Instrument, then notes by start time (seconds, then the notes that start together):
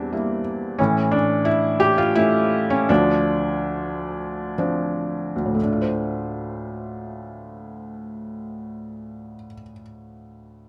felt piano
Already playing: E2 G3 C4 D4 E4
0.12 G3 A#3 E4
0.78 A2 E3 C#4
1.11 D4
1.45 E4
1.80 G4
1.98 F4
2.15 A3 C#4 E4
2.70 C#4
2.89 D2 F3 D4
4.58 F3 C4 D4
5.36 D2
5.45 A2
5.54 A3
5.63 D4
5.72 F4
5.82 C5